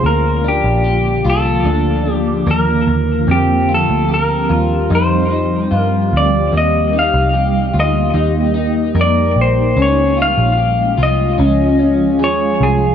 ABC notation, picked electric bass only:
X:1
M:4/4
L:1/16
Q:1/4=74
K:Bb
V:1 name="Picked electric bass" clef=bass
D,,3 B,,,3 C,,2 D,,4 E,,2 E,,2 | F,,3 D,,3 E,,2 F,,4 G,,2 D,,2 | E,,3 C,,3 D,,2 E,,4 F,,2 B,,,2 | _D,,3 B,,,3 C,,2 D,,4 E,,2 C,,2 |]